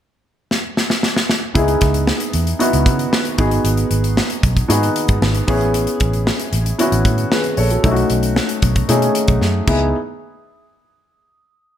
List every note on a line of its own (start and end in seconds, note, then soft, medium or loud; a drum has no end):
0.51 snare medium
0.77 snare medium
0.90 snare medium
1.03 snare medium
1.17 snare medium
1.29 snare medium
1.54 1.74 C#2 medium
1.54 2.51 B3 medium
1.54 2.51 D#4 medium
1.54 2.51 E4 medium
1.54 2.51 G#4 medium
1.54 kick medium
1.54 closed hi-hat medium
1.68 closed hi-hat medium
1.81 2.10 C#2 medium
1.81 kick medium
1.81 snare soft
1.81 closed hi-hat medium
1.94 closed hi-hat soft
2.07 snare loud
2.20 closed hi-hat medium
2.33 2.53 E2 medium
2.33 closed hi-hat medium
2.47 closed hi-hat soft
2.59 3.36 B3 medium
2.59 3.37 D#4 medium
2.59 3.39 E4 medium
2.59 3.37 F#4 medium
2.59 closed hi-hat medium
2.73 2.88 C#2 medium
2.73 closed hi-hat medium
2.86 3.05 C#3 loud
2.86 kick medium
2.86 closed hi-hat medium
2.99 closed hi-hat soft
3.13 snare loud
3.25 closed hi-hat soft
3.38 3.57 G#1 medium
3.38 4.34 B3 medium
3.38 4.34 D#4 medium
3.38 4.34 F#4 medium
3.38 4.35 G#4 medium
3.38 kick loud
3.38 closed hi-hat medium
3.51 closed hi-hat medium
3.64 3.83 G#1 medium
3.64 closed hi-hat medium
3.77 closed hi-hat medium
3.91 4.19 G#1 medium
3.91 closed hi-hat medium
4.04 closed hi-hat soft
4.17 snare loud
4.30 closed hi-hat medium
4.43 4.62 B1 medium
4.43 kick medium
4.43 closed hi-hat medium
4.57 kick medium
4.57 closed hi-hat soft
4.68 4.88 G#2 loud
4.68 5.46 B3 medium
4.68 5.48 D#4 medium
4.68 5.48 F#4 medium
4.68 5.47 G#4 medium
4.68 closed hi-hat medium
4.83 closed hi-hat medium
4.96 closed hi-hat medium
5.08 5.18 G#2 medium
5.08 kick medium
5.08 closed hi-hat soft
5.22 5.41 G#1 medium
5.22 snare loud
5.34 closed hi-hat soft
5.47 5.86 A1 medium
5.47 6.44 B3 medium
5.47 6.44 C#4 medium
5.47 6.44 E4 medium
5.47 6.44 G#4 medium
5.47 kick loud
5.47 open hi-hat medium
5.61 closed hi-hat soft
5.74 closed hi-hat medium
5.87 closed hi-hat soft
6.00 6.29 A1 medium
6.00 kick medium
6.00 closed hi-hat medium
6.13 closed hi-hat soft
6.27 snare loud
6.39 closed hi-hat medium
6.53 6.71 A1 medium
6.53 closed hi-hat medium
6.66 closed hi-hat medium
6.79 7.75 B3 medium
6.79 7.75 C#4 medium
6.79 7.75 E4 medium
6.79 7.32 F#4 medium
6.79 closed hi-hat medium
6.92 7.01 A1 medium
6.92 closed hi-hat medium
7.05 7.24 A2 medium
7.05 kick medium
7.05 closed hi-hat medium
7.18 closed hi-hat soft
7.31 7.57 G#4 medium
7.31 7.56 B4 medium
7.31 snare loud
7.44 closed hi-hat soft
7.57 7.76 A#1 medium
7.57 7.69 A4 medium
7.57 7.70 C#5 medium
7.57 open hi-hat medium
7.70 7.89 F#4 medium
7.70 7.96 A4 medium
7.70 closed hi-hat medium
7.83 8.03 B1 medium
7.83 8.80 A3 medium
7.83 8.80 C#4 medium
7.83 8.80 D#4 medium
7.83 7.91 E4 medium
7.83 kick loud
7.83 closed hi-hat medium
7.91 8.83 F#4 medium
7.96 closed hi-hat medium
8.10 8.38 B1 medium
8.10 closed hi-hat medium
8.23 closed hi-hat soft
8.36 snare loud
8.49 closed hi-hat medium
8.62 8.81 B1 medium
8.62 kick medium
8.62 closed hi-hat medium
8.76 kick medium
8.76 closed hi-hat medium
8.88 9.08 B2 medium
8.88 9.67 A3 medium
8.88 9.68 C#4 medium
8.88 9.66 D#4 medium
8.88 9.66 G#4 medium
8.88 closed hi-hat medium
9.02 closed hi-hat medium
9.15 closed hi-hat medium
9.28 9.38 B1 medium
9.28 kick medium
9.28 closed hi-hat soft
9.41 9.60 F#2 medium
9.41 snare soft
9.67 9.92 C#2 medium
9.67 9.92 B3 medium
9.67 9.92 D#4 medium
9.67 9.92 E4 medium
9.67 9.92 G#4 medium
9.67 kick medium
9.67 crash medium